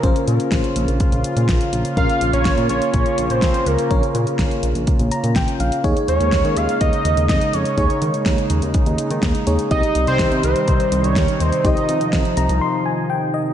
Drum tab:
HH |xxxxxxxxxxxxxxxx|xxxxxxxxxxxxxxxx|xxxxxxxxxxxxxxxx|xxxxxxxxxxxxxxxx|
SD |----o-------o---|----o-------o---|----o-------o---|----o-------o---|
BD |o---o---o---o---|o---o---o---o---|o---o---o---o---|o---o---o---o---|

HH |xxxxxxxxxxxxxxxx|xxxxxxxxxxxxxxxx|xxxxxxxx--------|
SD |----o-------o---|----o-------o---|----o-----------|
BD |o---o---o---o---|o---o---o---o---|o---o-----------|